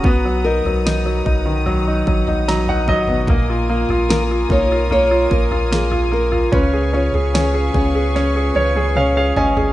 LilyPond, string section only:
\new Staff \with { instrumentName = "String section" } { \time 4/4 \key ais \phrygian \tempo 4 = 74 << { <b dis'''>1 | <ais' dis'''>1 | <b' cis'''>1 | } \\ { <fis'' ais''>1 | <eis'' gis''>1~ | <eis'' gis''>1 | } >> }